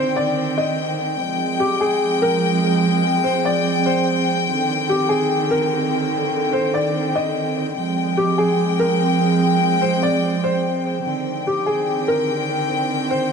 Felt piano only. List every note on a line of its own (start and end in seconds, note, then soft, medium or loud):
0.00 0.15 C5 medium
0.16 0.55 D5 medium
0.58 1.15 D#5 medium
1.60 1.79 G4 medium
1.81 2.19 G#4 medium
2.22 2.80 A#4 medium
3.24 3.44 C5 medium
3.45 3.84 D5 medium
3.86 4.44 C5 medium
4.89 5.09 G4 medium
5.09 5.48 G#4 medium
5.51 6.09 A#4 medium
6.53 6.73 C5 medium
6.74 7.12 D5 medium
7.15 7.73 D#5 medium
8.17 8.37 G4 medium
8.38 8.77 G#4 medium
8.80 9.37 A#4 medium
9.82 10.01 C5 medium
10.03 10.41 D5 medium
10.44 11.02 C5 medium
11.47 11.66 G4 medium
11.66 12.05 G#4 medium
12.08 12.66 A#4 medium
13.10 13.30 C5 medium